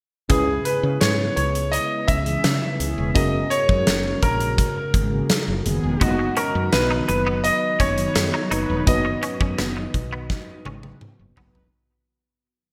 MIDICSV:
0, 0, Header, 1, 9, 480
1, 0, Start_track
1, 0, Tempo, 714286
1, 202, Time_signature, 4, 2, 24, 8
1, 8553, End_track
2, 0, Start_track
2, 0, Title_t, "Grand piano"
2, 0, Program_c, 0, 0
2, 198, Note_on_c, 0, 68, 79
2, 423, Note_off_c, 0, 68, 0
2, 437, Note_on_c, 0, 71, 77
2, 676, Note_on_c, 0, 73, 86
2, 687, Note_off_c, 0, 71, 0
2, 902, Note_off_c, 0, 73, 0
2, 917, Note_on_c, 0, 73, 80
2, 1153, Note_on_c, 0, 75, 96
2, 1167, Note_off_c, 0, 73, 0
2, 1395, Note_on_c, 0, 76, 97
2, 1405, Note_off_c, 0, 75, 0
2, 2116, Note_on_c, 0, 75, 91
2, 2140, Note_off_c, 0, 76, 0
2, 2354, Note_on_c, 0, 73, 104
2, 2366, Note_off_c, 0, 75, 0
2, 2841, Note_on_c, 0, 70, 87
2, 2853, Note_off_c, 0, 73, 0
2, 3295, Note_off_c, 0, 70, 0
2, 4041, Note_on_c, 0, 66, 82
2, 4279, Note_on_c, 0, 70, 82
2, 4289, Note_off_c, 0, 66, 0
2, 4504, Note_off_c, 0, 70, 0
2, 4519, Note_on_c, 0, 71, 91
2, 4744, Note_off_c, 0, 71, 0
2, 4759, Note_on_c, 0, 71, 84
2, 4984, Note_off_c, 0, 71, 0
2, 4998, Note_on_c, 0, 75, 99
2, 5242, Note_on_c, 0, 73, 97
2, 5247, Note_off_c, 0, 75, 0
2, 5935, Note_off_c, 0, 73, 0
2, 5960, Note_on_c, 0, 75, 89
2, 7374, Note_off_c, 0, 75, 0
2, 8553, End_track
3, 0, Start_track
3, 0, Title_t, "FM electric piano"
3, 0, Program_c, 1, 5
3, 194, Note_on_c, 1, 61, 59
3, 200, Note_on_c, 1, 64, 57
3, 202, Note_on_c, 1, 49, 60
3, 206, Note_on_c, 1, 68, 56
3, 211, Note_on_c, 1, 71, 68
3, 313, Control_c, 1, 64, 127
3, 896, Note_off_c, 1, 49, 0
3, 2091, Note_off_c, 1, 61, 0
3, 2094, Note_off_c, 1, 64, 0
3, 2097, Note_off_c, 1, 68, 0
3, 2100, Note_off_c, 1, 71, 0
3, 2112, Note_on_c, 1, 61, 59
3, 2118, Note_on_c, 1, 66, 54
3, 2123, Note_on_c, 1, 68, 52
3, 2128, Note_on_c, 1, 70, 68
3, 2130, Control_c, 1, 64, 0
3, 2240, Control_c, 1, 64, 127
3, 4010, Note_off_c, 1, 61, 0
3, 4013, Note_off_c, 1, 66, 0
3, 4016, Note_off_c, 1, 68, 0
3, 4018, Note_off_c, 1, 70, 0
3, 4036, Note_on_c, 1, 59, 63
3, 4042, Note_on_c, 1, 63, 55
3, 4046, Note_on_c, 1, 66, 56
3, 4051, Note_on_c, 1, 75, 70
3, 4052, Control_c, 1, 64, 0
3, 4154, Control_c, 1, 64, 127
3, 5932, Note_off_c, 1, 59, 0
3, 5935, Note_off_c, 1, 63, 0
3, 5937, Note_off_c, 1, 66, 0
3, 5940, Note_off_c, 1, 75, 0
3, 5954, Note_on_c, 1, 59, 62
3, 5959, Note_on_c, 1, 63, 55
3, 5965, Note_on_c, 1, 66, 55
3, 5971, Note_on_c, 1, 71, 64
3, 7851, Note_off_c, 1, 59, 0
3, 7854, Note_off_c, 1, 63, 0
3, 7857, Note_off_c, 1, 66, 0
3, 7860, Note_off_c, 1, 71, 0
3, 7891, Control_c, 1, 64, 0
3, 8553, End_track
4, 0, Start_track
4, 0, Title_t, "Analog polysynth"
4, 0, Program_c, 2, 90
4, 1520, Note_on_c, 2, 52, 76
4, 1520, Note_on_c, 2, 68, 88
4, 1521, Note_on_c, 2, 61, 79
4, 1614, Note_off_c, 2, 52, 0
4, 1614, Note_off_c, 2, 68, 0
4, 1615, Note_off_c, 2, 61, 0
4, 1880, Note_on_c, 2, 61, 89
4, 1881, Note_on_c, 2, 52, 85
4, 1881, Note_on_c, 2, 68, 91
4, 2085, Note_off_c, 2, 61, 0
4, 2085, Note_off_c, 2, 68, 0
4, 2086, Note_off_c, 2, 52, 0
4, 3440, Note_on_c, 2, 58, 78
4, 3441, Note_on_c, 2, 49, 77
4, 3441, Note_on_c, 2, 68, 80
4, 3534, Note_off_c, 2, 58, 0
4, 3535, Note_off_c, 2, 49, 0
4, 3535, Note_off_c, 2, 68, 0
4, 3801, Note_on_c, 2, 68, 97
4, 3802, Note_on_c, 2, 51, 88
4, 3802, Note_on_c, 2, 59, 83
4, 4108, Note_off_c, 2, 51, 0
4, 4108, Note_off_c, 2, 59, 0
4, 4108, Note_off_c, 2, 68, 0
4, 5361, Note_on_c, 2, 63, 76
4, 5361, Note_on_c, 2, 71, 84
4, 5362, Note_on_c, 2, 54, 75
4, 5455, Note_off_c, 2, 63, 0
4, 5455, Note_off_c, 2, 71, 0
4, 5456, Note_off_c, 2, 54, 0
4, 5722, Note_on_c, 2, 54, 86
4, 5722, Note_on_c, 2, 63, 89
4, 5723, Note_on_c, 2, 71, 100
4, 5926, Note_off_c, 2, 54, 0
4, 5926, Note_off_c, 2, 63, 0
4, 5927, Note_off_c, 2, 71, 0
4, 7282, Note_on_c, 2, 54, 78
4, 7282, Note_on_c, 2, 63, 79
4, 7282, Note_on_c, 2, 71, 86
4, 7376, Note_off_c, 2, 63, 0
4, 7376, Note_off_c, 2, 71, 0
4, 7377, Note_off_c, 2, 54, 0
4, 7643, Note_on_c, 2, 54, 84
4, 7643, Note_on_c, 2, 63, 83
4, 7643, Note_on_c, 2, 71, 97
4, 7846, Note_off_c, 2, 54, 0
4, 7847, Note_off_c, 2, 63, 0
4, 7847, Note_off_c, 2, 71, 0
4, 8553, End_track
5, 0, Start_track
5, 0, Title_t, "Clean electric guitar"
5, 0, Program_c, 3, 27
5, 4040, Note_on_c, 3, 59, 80
5, 4134, Note_off_c, 3, 59, 0
5, 4279, Note_on_c, 3, 61, 63
5, 4373, Note_off_c, 3, 61, 0
5, 4640, Note_on_c, 3, 63, 65
5, 4734, Note_off_c, 3, 63, 0
5, 4883, Note_on_c, 3, 59, 74
5, 4975, Note_off_c, 3, 59, 0
5, 5242, Note_on_c, 3, 61, 76
5, 5335, Note_off_c, 3, 61, 0
5, 5603, Note_on_c, 3, 63, 69
5, 5696, Note_off_c, 3, 63, 0
5, 5720, Note_on_c, 3, 63, 79
5, 5814, Note_off_c, 3, 63, 0
5, 6202, Note_on_c, 3, 61, 69
5, 6295, Note_off_c, 3, 61, 0
5, 6322, Note_on_c, 3, 61, 68
5, 6415, Note_off_c, 3, 61, 0
5, 6441, Note_on_c, 3, 59, 76
5, 6534, Note_off_c, 3, 59, 0
5, 6804, Note_on_c, 3, 59, 70
5, 6897, Note_off_c, 3, 59, 0
5, 7166, Note_on_c, 3, 61, 69
5, 7257, Note_off_c, 3, 61, 0
5, 7644, Note_on_c, 3, 59, 65
5, 7737, Note_off_c, 3, 59, 0
5, 8553, End_track
6, 0, Start_track
6, 0, Title_t, "Ambient pad"
6, 0, Program_c, 4, 92
6, 203, Note_on_c, 4, 49, 72
6, 203, Note_on_c, 4, 56, 70
6, 204, Note_on_c, 4, 59, 68
6, 207, Note_on_c, 4, 64, 84
6, 2104, Note_off_c, 4, 59, 0
6, 2105, Note_off_c, 4, 64, 0
6, 2117, Note_on_c, 4, 70, 71
6, 2120, Note_on_c, 4, 66, 81
6, 4016, Note_off_c, 4, 49, 0
6, 4016, Note_off_c, 4, 56, 0
6, 4020, Note_off_c, 4, 70, 0
6, 4040, Note_on_c, 4, 51, 75
6, 4040, Note_on_c, 4, 59, 72
6, 4042, Note_on_c, 4, 54, 68
6, 7854, Note_off_c, 4, 51, 0
6, 7854, Note_off_c, 4, 59, 0
6, 7854, Note_off_c, 4, 66, 0
6, 7855, Note_off_c, 4, 54, 0
6, 8553, End_track
7, 0, Start_track
7, 0, Title_t, "Fretless electric bass"
7, 0, Program_c, 5, 35
7, 202, Note_on_c, 5, 37, 94
7, 382, Note_off_c, 5, 37, 0
7, 560, Note_on_c, 5, 49, 87
7, 651, Note_off_c, 5, 49, 0
7, 682, Note_on_c, 5, 44, 83
7, 862, Note_off_c, 5, 44, 0
7, 921, Note_on_c, 5, 37, 82
7, 1192, Note_off_c, 5, 37, 0
7, 1400, Note_on_c, 5, 37, 78
7, 1581, Note_off_c, 5, 37, 0
7, 1642, Note_on_c, 5, 49, 88
7, 1732, Note_off_c, 5, 49, 0
7, 1881, Note_on_c, 5, 37, 76
7, 1972, Note_off_c, 5, 37, 0
7, 2002, Note_on_c, 5, 28, 79
7, 2092, Note_off_c, 5, 28, 0
7, 2121, Note_on_c, 5, 30, 87
7, 2301, Note_off_c, 5, 30, 0
7, 2480, Note_on_c, 5, 42, 92
7, 2571, Note_off_c, 5, 42, 0
7, 2603, Note_on_c, 5, 30, 87
7, 2783, Note_off_c, 5, 30, 0
7, 2840, Note_on_c, 5, 34, 76
7, 3111, Note_off_c, 5, 34, 0
7, 3320, Note_on_c, 5, 32, 80
7, 3501, Note_off_c, 5, 32, 0
7, 3682, Note_on_c, 5, 30, 76
7, 3772, Note_off_c, 5, 30, 0
7, 3803, Note_on_c, 5, 30, 85
7, 3893, Note_off_c, 5, 30, 0
7, 3921, Note_on_c, 5, 28, 76
7, 4012, Note_off_c, 5, 28, 0
7, 4041, Note_on_c, 5, 30, 86
7, 4221, Note_off_c, 5, 30, 0
7, 4403, Note_on_c, 5, 42, 90
7, 4493, Note_off_c, 5, 42, 0
7, 4526, Note_on_c, 5, 35, 76
7, 4705, Note_off_c, 5, 35, 0
7, 4765, Note_on_c, 5, 30, 81
7, 5034, Note_off_c, 5, 30, 0
7, 5241, Note_on_c, 5, 30, 79
7, 5421, Note_off_c, 5, 30, 0
7, 5482, Note_on_c, 5, 42, 94
7, 5572, Note_off_c, 5, 42, 0
7, 5721, Note_on_c, 5, 30, 79
7, 5811, Note_off_c, 5, 30, 0
7, 5844, Note_on_c, 5, 28, 75
7, 5933, Note_off_c, 5, 28, 0
7, 5962, Note_on_c, 5, 30, 92
7, 6142, Note_off_c, 5, 30, 0
7, 6322, Note_on_c, 5, 42, 90
7, 6412, Note_off_c, 5, 42, 0
7, 6445, Note_on_c, 5, 30, 86
7, 6624, Note_off_c, 5, 30, 0
7, 6682, Note_on_c, 5, 35, 78
7, 6952, Note_off_c, 5, 35, 0
7, 7163, Note_on_c, 5, 32, 83
7, 7343, Note_off_c, 5, 32, 0
7, 7523, Note_on_c, 5, 30, 82
7, 7612, Note_off_c, 5, 30, 0
7, 7640, Note_on_c, 5, 30, 79
7, 7731, Note_off_c, 5, 30, 0
7, 7762, Note_on_c, 5, 28, 74
7, 7852, Note_off_c, 5, 28, 0
7, 8553, End_track
8, 0, Start_track
8, 0, Title_t, "Muted clean electric guitar strokes"
8, 4162, Note_on_c, 9, 29, 41
8, 4229, Note_off_c, 9, 29, 0
8, 4762, Note_on_c, 9, 29, 42
8, 4829, Note_off_c, 9, 29, 0
8, 5481, Note_on_c, 9, 29, 40
8, 5548, Note_off_c, 9, 29, 0
8, 6080, Note_on_c, 9, 29, 41
8, 6147, Note_off_c, 9, 29, 0
8, 6563, Note_on_c, 9, 29, 38
8, 6631, Note_off_c, 9, 29, 0
8, 8553, End_track
9, 0, Start_track
9, 0, Title_t, "Drums"
9, 199, Note_on_c, 9, 42, 85
9, 201, Note_on_c, 9, 36, 107
9, 266, Note_off_c, 9, 42, 0
9, 268, Note_off_c, 9, 36, 0
9, 439, Note_on_c, 9, 42, 59
9, 506, Note_off_c, 9, 42, 0
9, 680, Note_on_c, 9, 42, 77
9, 681, Note_on_c, 9, 38, 96
9, 747, Note_off_c, 9, 42, 0
9, 748, Note_off_c, 9, 38, 0
9, 921, Note_on_c, 9, 42, 55
9, 988, Note_off_c, 9, 42, 0
9, 1043, Note_on_c, 9, 42, 53
9, 1110, Note_off_c, 9, 42, 0
9, 1163, Note_on_c, 9, 42, 79
9, 1230, Note_off_c, 9, 42, 0
9, 1400, Note_on_c, 9, 36, 80
9, 1403, Note_on_c, 9, 42, 61
9, 1468, Note_off_c, 9, 36, 0
9, 1471, Note_off_c, 9, 42, 0
9, 1520, Note_on_c, 9, 42, 50
9, 1587, Note_off_c, 9, 42, 0
9, 1640, Note_on_c, 9, 42, 82
9, 1641, Note_on_c, 9, 38, 110
9, 1707, Note_off_c, 9, 42, 0
9, 1708, Note_off_c, 9, 38, 0
9, 1883, Note_on_c, 9, 42, 68
9, 1950, Note_off_c, 9, 42, 0
9, 2120, Note_on_c, 9, 36, 110
9, 2121, Note_on_c, 9, 42, 85
9, 2187, Note_off_c, 9, 36, 0
9, 2189, Note_off_c, 9, 42, 0
9, 2360, Note_on_c, 9, 42, 60
9, 2427, Note_off_c, 9, 42, 0
9, 2480, Note_on_c, 9, 36, 86
9, 2547, Note_off_c, 9, 36, 0
9, 2600, Note_on_c, 9, 42, 78
9, 2601, Note_on_c, 9, 38, 96
9, 2667, Note_off_c, 9, 42, 0
9, 2668, Note_off_c, 9, 38, 0
9, 2839, Note_on_c, 9, 42, 56
9, 2840, Note_on_c, 9, 36, 74
9, 2907, Note_off_c, 9, 36, 0
9, 2907, Note_off_c, 9, 42, 0
9, 2960, Note_on_c, 9, 42, 52
9, 3027, Note_off_c, 9, 42, 0
9, 3080, Note_on_c, 9, 36, 81
9, 3081, Note_on_c, 9, 42, 80
9, 3147, Note_off_c, 9, 36, 0
9, 3148, Note_off_c, 9, 42, 0
9, 3319, Note_on_c, 9, 36, 84
9, 3320, Note_on_c, 9, 42, 63
9, 3387, Note_off_c, 9, 36, 0
9, 3387, Note_off_c, 9, 42, 0
9, 3559, Note_on_c, 9, 42, 85
9, 3560, Note_on_c, 9, 38, 105
9, 3626, Note_off_c, 9, 42, 0
9, 3628, Note_off_c, 9, 38, 0
9, 3802, Note_on_c, 9, 42, 64
9, 3869, Note_off_c, 9, 42, 0
9, 4040, Note_on_c, 9, 42, 82
9, 4041, Note_on_c, 9, 36, 110
9, 4107, Note_off_c, 9, 42, 0
9, 4108, Note_off_c, 9, 36, 0
9, 4278, Note_on_c, 9, 42, 61
9, 4345, Note_off_c, 9, 42, 0
9, 4519, Note_on_c, 9, 42, 77
9, 4520, Note_on_c, 9, 38, 96
9, 4587, Note_off_c, 9, 42, 0
9, 4588, Note_off_c, 9, 38, 0
9, 4762, Note_on_c, 9, 42, 55
9, 4829, Note_off_c, 9, 42, 0
9, 5003, Note_on_c, 9, 42, 77
9, 5070, Note_off_c, 9, 42, 0
9, 5240, Note_on_c, 9, 36, 84
9, 5241, Note_on_c, 9, 42, 63
9, 5308, Note_off_c, 9, 36, 0
9, 5308, Note_off_c, 9, 42, 0
9, 5361, Note_on_c, 9, 42, 53
9, 5428, Note_off_c, 9, 42, 0
9, 5480, Note_on_c, 9, 42, 89
9, 5481, Note_on_c, 9, 38, 104
9, 5547, Note_off_c, 9, 42, 0
9, 5548, Note_off_c, 9, 38, 0
9, 5723, Note_on_c, 9, 42, 63
9, 5790, Note_off_c, 9, 42, 0
9, 5962, Note_on_c, 9, 36, 113
9, 5962, Note_on_c, 9, 42, 84
9, 6029, Note_off_c, 9, 36, 0
9, 6029, Note_off_c, 9, 42, 0
9, 6200, Note_on_c, 9, 42, 65
9, 6268, Note_off_c, 9, 42, 0
9, 6321, Note_on_c, 9, 36, 82
9, 6388, Note_off_c, 9, 36, 0
9, 6441, Note_on_c, 9, 42, 74
9, 6442, Note_on_c, 9, 38, 95
9, 6508, Note_off_c, 9, 42, 0
9, 6509, Note_off_c, 9, 38, 0
9, 6681, Note_on_c, 9, 36, 78
9, 6682, Note_on_c, 9, 42, 56
9, 6748, Note_off_c, 9, 36, 0
9, 6749, Note_off_c, 9, 42, 0
9, 6921, Note_on_c, 9, 36, 84
9, 6921, Note_on_c, 9, 38, 48
9, 6988, Note_off_c, 9, 36, 0
9, 6988, Note_off_c, 9, 38, 0
9, 7160, Note_on_c, 9, 48, 58
9, 7227, Note_off_c, 9, 48, 0
9, 7280, Note_on_c, 9, 48, 62
9, 7347, Note_off_c, 9, 48, 0
9, 7400, Note_on_c, 9, 47, 77
9, 7467, Note_off_c, 9, 47, 0
9, 7640, Note_on_c, 9, 43, 84
9, 7707, Note_off_c, 9, 43, 0
9, 7761, Note_on_c, 9, 43, 75
9, 7829, Note_off_c, 9, 43, 0
9, 8553, End_track
0, 0, End_of_file